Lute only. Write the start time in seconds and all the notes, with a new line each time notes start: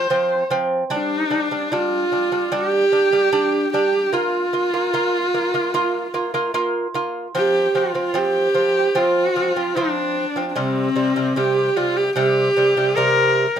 0.10 F3 C4
0.50 F3 C4
0.90 G3 D4
1.30 G3 D4
1.51 G3 D4
1.72 G3 D4
2.12 G3 D4
2.32 G3 D4
2.52 G3 D4
2.92 G3 D4
3.12 G3 D4
3.32 G3 D4
3.74 G3 D4
4.13 A#3 F4
4.53 A#3 F4
4.73 A#3 F4
4.94 A#3 F4
5.34 A#3 F4
5.54 A#3 F4
5.74 A#3 F4
6.14 A#3 F4
6.34 A#3 F4
6.54 A#3 F4
6.94 A#3 F4
7.35 F3 C4
7.75 F3 C4
7.95 F3 C4
8.14 F3 C4
8.54 F3 C4
8.95 F3 C4
9.36 F3 C4
9.56 F3 C4
9.76 F3 C4
10.36 F3 C4
10.56 C3 G3
10.96 C3 G3
11.16 C3 G3
11.36 C3 G3
11.76 C3 G3
12.16 C3 G3
12.57 C3 G3
12.77 C3 G3
12.97 C3 G3
13.56 C3